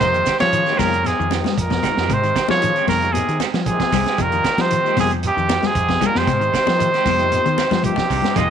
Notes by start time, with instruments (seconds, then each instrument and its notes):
0.00 fingered electric bass F2, bass trombone C3, clean electric guitar C3, trombone D#3, tonewheel organ F3 A#3 D#4 A#4, trumpet C5, kick, snare, closed hi-hat, shekere
0.14 clean electric guitar D#3, closed hi-hat, shekere
0.26 clean electric guitar D#3 G#3 C4 G4, kick, snare, closed hi-hat, shekere
0.40 bass trombone C#3, trombone F3, fingered electric bass F3, clean electric guitar G3, trumpet C#5, snare, closed hi-hat, high conga, shekere
0.53 clean electric guitar D#3, closed hi-hat, shekere
0.66 tonewheel organ F3 A#3 D#4 G4, clean electric guitar G#3 C4 G4, snare, shekere
0.78 fingered electric bass F2, bass trombone A#2, clean electric guitar C3 D#3 G#3 G4, trombone C#3, trumpet A#4, muted clean electric guitar stroke, kick, snare, open hi-hat, high conga, low conga, shekere
0.93 closed hi-hat, shekere
1.05 bass trombone G#2, trombone C3, trumpet G#4, snare, closed hi-hat, high conga, shekere
1.19 fingered electric bass F2, clean electric guitar D#3, shekere
1.31 clean electric guitar D#3 C4 G4, tonewheel organ F3 A#3 D#4 G4, muted clean electric guitar stroke, snare, closed hi-hat, high conga, shekere
1.44 clean electric guitar G3, snare, closed hi-hat, low conga, shekere
1.57 fingered electric bass F2, bass trombone A#2, kick, closed hi-hat, shekere
1.61 trombone D#3, trumpet A#4
1.70 clean electric guitar F3, kick, snare, high conga, shekere
1.83 clean electric guitar D#3 G3 G#3 C4 G4, tonewheel organ F3 A#3 D#4 G4, kick, snare, closed hi-hat, low conga, shekere
1.97 fingered electric bass F2, clean electric guitar G#3 C4 G4, snare, shekere
2.10 fingered electric bass G#2, bass trombone C3, clean electric guitar C3, trombone D#3, trumpet C5, kick, closed hi-hat, shekere
2.23 clean electric guitar D#3, closed hi-hat, shekere
2.36 clean electric guitar D#3 G#3 C4 G4, kick, snare, closed hi-hat, shekere
2.48 bass trombone C#3, tonewheel organ F3 A#3 D#4 G4, trombone F3, fingered electric bass F3, clean electric guitar G3, trumpet C#5, snare, high conga, shekere
2.62 clean electric guitar D#3, closed hi-hat, shekere
2.75 clean electric guitar G#3 C4 G4, closed hi-hat, shekere
2.88 fingered electric bass F2, bass trombone A#2, clean electric guitar C3 D#3 G#3 C4 G4, trombone C#3, trumpet A#4, kick, open hi-hat, high conga, low conga, shekere
3.02 tonewheel organ F3 A#3 D#4 G4, closed hi-hat, shekere
3.12 bass trombone G#2, trombone C3, trumpet G#4, closed hi-hat, high conga, shekere
3.28 fingered electric bass D#3, closed hi-hat, shekere
3.40 clean electric guitar D#3 G#3 C4 G4, snare, closed hi-hat, high conga, shekere
3.54 fingered electric bass F3, clean electric guitar G3, snare, closed hi-hat, shekere
3.66 bass trombone G#2, trombone C3, tonewheel organ F3 A#3 D#4 G4, trumpet G#4, kick, closed hi-hat, shekere
3.80 clean electric guitar F3, muted fingered electric bass stroke, kick, snare, closed hi-hat, high conga, shekere
3.92 fingered electric bass C2, clean electric guitar D#3 G3 G#3 C4 G4, kick, snare, open hi-hat, low conga, shekere
4.06 clean electric guitar G#3 C4 G4, snare, closed hi-hat, shekere
4.18 fingered electric bass F2, bass trombone A#2, clean electric guitar C3, trombone D#3, tonewheel organ F3 A#3 D#4 G4, trumpet A#4, kick, closed hi-hat, shekere
4.32 clean electric guitar D#3, closed hi-hat, shekere
4.44 clean electric guitar D#3 G#3 C4 G4, kick, snare, closed hi-hat, shekere
4.58 bass trombone C3, trombone D#3, fingered electric bass F3, clean electric guitar G3, trumpet C5, snare, closed hi-hat, high conga, shekere
4.70 clean electric guitar D#3, closed hi-hat, shekere
4.83 tonewheel organ F3 A#3 D#4 G4, clean electric guitar G#3 C4 G4, shekere
4.97 fingered electric bass F2, bass trombone G#2, clean electric guitar C3 D#3 G#3 C4 G4, trombone C3, trumpet G#4, kick, open hi-hat, high conga, low conga, shekere
5.11 closed hi-hat, shekere
5.23 bass trombone G2, trombone C3, closed hi-hat, shekere
5.27 trumpet G4
5.37 fingered electric bass F2, clean electric guitar D#3, shekere
5.48 clean electric guitar D#3 G#3 C4 G4, tonewheel organ F3 A#3 D#4 G4, snare, closed hi-hat, high conga, shekere
5.62 bass trombone G#2, trombone C3, clean electric guitar G3, trumpet G#4, snare, closed hi-hat, low conga, shekere
5.75 fingered electric bass F2, kick, closed hi-hat, shekere
5.89 clean electric guitar F3, kick, snare, high conga, shekere
6.01 bass trombone A#2, trombone C#3, clean electric guitar D#3 G3 G#3 C4 G4, tonewheel organ F3 A#3 D#4 G4, kick, closed hi-hat, low conga, shekere
6.06 trumpet A#4
6.14 fingered electric bass F2, bass trombone C3, trombone D#3, clean electric guitar G#3 C4 G4, trumpet C5, snare, high conga, shekere
6.27 fingered electric bass G#2, clean electric guitar C3, kick, snare, closed hi-hat, shekere
6.41 clean electric guitar D#3, closed hi-hat, shekere
6.53 clean electric guitar D#3 G#3 C4 G4, kick, snare, closed hi-hat, shekere
6.65 tonewheel organ F3 A#3 D#4 A#4, fingered electric bass F3, clean electric guitar G3, snare, high conga, shekere
6.80 clean electric guitar D#3, closed hi-hat, shekere
6.93 clean electric guitar G#3 C4 G4, snare, closed hi-hat, shekere
7.05 fingered electric bass F2, clean electric guitar C3 D#3 G#3 C4 G4, kick, open hi-hat, high conga, low conga, shekere
7.18 tonewheel organ F3 A#3 D#4 G4, closed hi-hat, shekere
7.32 closed hi-hat, high conga, shekere
7.45 clean electric guitar D#3, fingered electric bass D#3, closed hi-hat, high conga, shekere
7.58 clean electric guitar D#3 G#3 C4 G4, snare, closed hi-hat, high conga, shekere
7.71 fingered electric bass F3, clean electric guitar G3, snare, closed hi-hat, low conga, shekere
7.83 bass trombone G2, trombone C3, tonewheel organ F3 A#3 D#4 G4, trumpet G4, kick, closed hi-hat, low conga, shekere
7.96 clean electric guitar F3, muted fingered electric bass stroke, kick, snare, closed hi-hat, low conga, shekere
8.10 fingered electric bass C2, clean electric guitar D#3 G3 G#3 C4 G4, kick, open hi-hat, shekere
8.22 clean electric guitar G#3 G4, muted clean electric guitar stroke, snare, closed hi-hat, low conga
8.26 shekere
8.35 fingered electric bass F2, clean electric guitar C3 D#3 G#3 C4 F4, bass trombone D#3, tonewheel organ F3 A#3 D#4 G4, trombone G#3, trumpet D#5, kick, snare, closed hi-hat, shekere